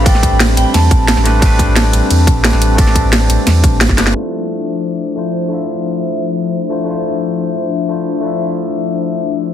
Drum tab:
RD |x-x-x-x-x-x-x-x-|x-x-x-x-x-x-x-x-|x-x-x-x-x-x-x-x-|----------------|
HH |x-x-x-x-x-x-x-x-|x-x-x-x-x-x-x-x-|x-x-x-x-x-x-x-x-|----------------|
SD |-o--o---o---ooo-|----o-------oo--|-o--o---o---oooo|----------------|
BD |o-o-------o-----|o-o-------o-----|o-o-------o--o--|----------------|

RD |----------------|----------------|----------------|
HH |----------------|----------------|----------------|
SD |----------------|----------------|----------------|
BD |----------------|----------------|----------------|